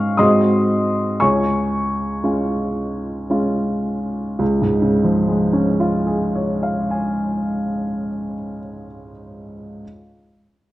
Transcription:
0.00 0.15 G#2 soft
0.00 0.14 G#3 soft
0.00 0.15 C#4 soft
0.00 0.15 F4 soft
0.00 0.14 F5 medium
0.00 0.14 C#6 soft
0.00 0.18 F6 medium
0.17 1.17 G#2 soft
0.17 1.16 G#3 soft
0.17 1.17 C4 soft
0.17 1.17 F#4 soft
0.17 1.16 D#5 soft
0.17 1.16 C6 soft
0.17 1.20 D#6 medium
1.20 2.21 C#2 soft
1.20 3.26 C#5 soft
1.20 3.25 G#5 soft
1.20 3.29 C#6 medium
2.24 3.25 G#3 soft
2.24 3.25 C#4 soft
2.24 3.26 F4 soft
3.30 4.37 G#3 soft
3.30 4.37 C#4 soft
3.30 4.37 F4 soft
4.39 7.44 C#2 soft
4.62 7.67 G#2 soft
4.82 7.87 C#3 soft
5.04 8.09 F3 soft
5.28 8.33 G#3 soft
5.53 8.58 C#4 soft
5.80 8.85 F4 soft
6.07 9.12 G#4 soft
6.35 9.12 C#5 soft
6.63 9.11 F5 soft
6.91 9.11 G#5 soft

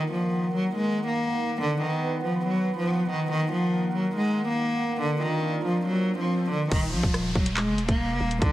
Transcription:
0.00 3.28 D#3 medium
0.00 1.59 A#3 medium
0.00 1.59 A#4 medium
0.00 4.97 F#5 medium
0.12 0.52 F3 medium
0.55 0.71 F#3 medium
0.76 1.06 G#3 medium
1.07 1.57 A#3 medium
1.61 1.78 D3 loud
1.61 3.29 B3 medium
1.61 3.29 B4 medium
1.83 2.22 D#3 medium
2.24 2.41 F3 medium
2.46 2.76 F#3 medium
2.78 3.08 F3 medium
3.09 3.27 D#3 medium
3.31 3.48 D#3 loud
3.31 5.00 D#3 medium
3.31 6.68 A#3 medium
3.31 5.00 A#4 medium
3.31 swell medium
3.52 3.92 F3 medium
3.95 4.12 F#3 medium
4.16 4.46 G#3 medium
4.48 4.98 A#3 medium
5.01 5.18 D3 loud
5.01 6.70 D4 medium
5.01 6.70 F4 medium
5.01 6.70 A#4 medium
5.23 5.63 D#3 medium
5.65 5.82 F3 medium
5.86 6.16 F#3 medium
6.19 6.49 F3 medium
6.50 6.67 D3 medium
6.71 6.94 D#1 loud
6.71 6.88 D#3 loud
6.71 kick loud
6.71 closed hi-hat medium
6.71 crash medium
6.71 downlifter medium
6.93 7.03 A#1 loud
6.93 7.33 F3 medium
7.03 7.34 D#1 loud
7.03 kick medium
7.14 cross-stick loud
7.14 closed hi-hat medium
7.35 7.69 D#1 loud
7.35 7.52 F#3 medium
7.35 kick medium
7.46 closed hi-hat loud
7.56 7.86 G#3 medium
7.56 clap loud
7.56 closed hi-hat medium
7.67 7.79 F#1 loud
7.78 7.88 D#1 loud
7.78 closed hi-hat medium
7.88 8.11 D#1 loud
7.88 8.38 A#3 medium
7.88 kick loud
7.88 closed hi-hat medium
8.10 8.20 F1 loud
8.20 8.41 D#1 loud
8.31 closed hi-hat medium
8.42 8.52 B1 loud
8.42 8.52 D3 loud
8.42 kick loud
8.42 closed hi-hat medium

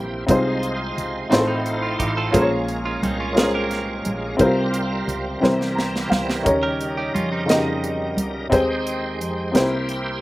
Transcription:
0.00 0.25 A#1 medium
0.00 0.28 C3 medium
0.00 0.25 A#3 medium
0.00 0.27 C4 medium
0.00 0.25 E4 soft
0.00 0.30 E4 medium
0.00 0.25 G4 soft
0.00 0.30 G4 medium
0.00 0.30 A#4 medium
0.00 0.25 C5 medium
0.00 0.30 C5 medium
0.27 0.93 C2 medium
0.27 1.27 C3 medium
0.27 1.32 G#3 medium
0.27 0.89 C4 medium
0.27 0.90 D#4 medium
0.27 1.30 D#4 soft
0.27 0.91 F4 medium
0.27 1.31 F4 medium
0.27 0.91 G#4 medium
0.27 1.32 C5 medium
0.27 kick medium
0.27 closed hi-hat medium
0.31 0.91 C5 medium
0.63 closed hi-hat soft
0.98 1.29 C#2 medium
0.98 closed hi-hat soft
1.30 1.96 A1 medium
1.30 2.30 A2 medium
1.30 1.48 A3 soft
1.30 2.34 A3 medium
1.30 1.92 C4 medium
1.30 1.47 C4 medium
1.30 1.93 D#4 medium
1.30 2.34 D#4 medium
1.30 1.93 F4 medium
1.30 2.33 F4 medium
1.30 1.38 G#4 medium
1.30 1.38 A#4 medium
1.30 1.94 C5 medium
1.30 snare medium
1.30 closed hi-hat medium
1.38 1.97 A4 medium
1.38 2.37 C5 medium
1.47 1.81 C4 medium
1.47 1.80 D#4 medium
1.66 closed hi-hat soft
1.82 1.99 F4 medium
1.99 2.31 A1 medium
1.99 2.16 D#4 medium
1.99 2.16 G4 medium
1.99 kick medium
1.99 closed hi-hat medium
2.17 2.50 F4 medium
2.17 2.50 A4 medium
2.31 2.99 A#1 medium
2.31 3.33 A#2 medium
2.31 4.36 G#3 medium
2.31 2.95 C#4 medium
2.31 4.36 C#4 medium
2.31 2.95 F4 medium
2.31 4.36 F4 soft
2.31 2.96 G#4 medium
2.31 2.96 A#4 medium
2.31 4.36 A#4 medium
2.31 2.41 C5 medium
2.31 kick medium
2.31 closed hi-hat medium
2.41 3.00 C#5 medium
2.68 closed hi-hat soft
2.85 3.03 C#4 soft
2.85 3.02 F4 medium
3.03 4.02 C2 medium
3.03 3.19 C4 medium
3.03 3.19 D#4 medium
3.03 closed hi-hat medium
3.20 3.36 C#4 medium
3.20 3.36 F4 medium
3.33 3.98 G#3 medium
3.33 3.97 C#4 medium
3.33 3.98 F4 medium
3.33 3.99 A#4 medium
3.37 3.54 F4 medium
3.37 3.53 G#4 medium
3.37 3.44 C5 medium
3.37 snare medium
3.37 closed hi-hat medium
3.44 4.02 C#5 medium
3.54 4.36 G4 medium
3.54 4.36 A#4 medium
3.71 snare soft
3.71 closed hi-hat soft
4.05 4.37 A#1 medium
4.05 closed hi-hat medium
4.37 5.04 C2 medium
4.37 5.38 C3 medium
4.37 5.40 G3 medium
4.37 5.00 C4 medium
4.37 5.41 C4 soft
4.37 4.45 E4 medium
4.37 5.43 F4 soft
4.37 5.01 G4 medium
4.37 4.47 G#4 soft
4.37 5.02 A#4 medium
4.37 5.02 C5 medium
4.37 kick medium
4.37 closed hi-hat medium
4.44 5.04 F4 medium
4.44 5.40 A#4 medium
4.74 closed hi-hat soft
5.08 5.40 C#2 medium
5.08 closed hi-hat soft
5.40 6.07 C2 medium
5.40 6.41 C3 medium
5.40 6.45 E3 medium
5.40 6.45 G3 medium
5.40 6.04 C4 medium
5.40 6.45 C4 medium
5.40 6.04 E4 medium
5.40 6.04 G4 medium
5.40 6.45 A#4 medium
5.40 6.05 A#4 medium
5.40 6.05 C5 medium
5.40 snare soft
5.61 snare soft
5.75 6.08 A#5 soft
5.75 snare medium
5.96 snare medium
6.10 6.43 C#2 medium
6.10 6.42 F5 medium
6.10 snare medium
6.29 snare medium
6.43 7.10 D#2 medium
6.43 8.48 C#3 soft
6.43 7.44 D#3 medium
6.43 8.48 G3 medium
6.43 7.06 C#4 medium
6.43 7.07 D#4 medium
6.43 8.48 D#4 soft
6.43 7.07 G4 medium
6.43 7.08 A#4 medium
6.43 8.48 A#4 medium
6.43 7.08 C#5 medium
6.43 kick medium
6.43 closed hi-hat medium
6.63 6.96 G4 soft
6.63 6.95 A#4 medium
6.81 closed hi-hat soft
6.97 7.14 D#4 medium
6.97 7.14 G4 medium
7.15 8.13 F2 medium
7.15 7.31 C#4 medium
7.15 7.31 F4 medium
7.15 closed hi-hat medium
7.32 8.31 C4 soft
7.32 8.31 D#4 soft
7.46 8.09 C#3 medium
7.46 8.10 D#4 medium
7.46 7.55 F#4 soft
7.46 8.11 A#4 medium
7.46 closed hi-hat medium
7.50 8.11 D#5 medium
7.50 snare medium
7.54 8.13 G4 medium
7.84 closed hi-hat soft
8.17 8.49 C#2 medium
8.17 closed hi-hat medium
8.50 9.20 D#2 medium
8.50 9.50 D#3 medium
8.50 9.55 G#3 medium
8.50 9.12 C4 medium
8.50 9.13 D#4 medium
8.50 9.55 D#4 soft
8.50 9.13 G4 medium
8.50 9.14 G#4 medium
8.50 9.14 C5 medium
8.50 kick medium
8.50 closed hi-hat medium
8.54 9.54 C5 medium
8.54 9.56 G5 soft
8.87 closed hi-hat soft
9.20 9.52 F2 medium
9.20 closed hi-hat soft
9.52 10.19 C2 medium
9.52 10.21 C3 medium
9.52 10.21 A#3 medium
9.52 10.15 C4 medium
9.52 9.60 D#4 soft
9.52 10.21 E4 medium
9.52 10.16 G4 medium
9.52 10.21 G4 medium
9.52 10.16 A#4 medium
9.52 10.21 C5 medium
9.52 10.17 C5 medium
9.52 snare medium
9.52 closed hi-hat medium
9.59 10.18 E4 medium
9.89 closed hi-hat soft

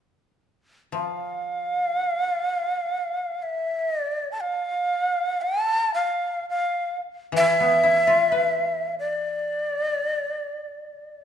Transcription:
0.92 3.92 F3 soft
0.92 3.44 F5 medium
3.42 3.88 E5 medium
3.88 3.99 D#5 medium
3.99 4.31 D5 medium
4.32 4.42 A5 medium
4.41 5.43 F5 medium
5.42 5.92 A5 loud
5.94 6.45 F5 medium
6.50 7.00 F5 medium
7.32 10.32 E3 medium
7.37 8.95 E5 loud
7.60 9.56 B3 soft
7.83 9.81 E4 medium
8.07 10.07 F4 soft
8.32 10.34 B4 soft
8.99 11.24 D5 medium

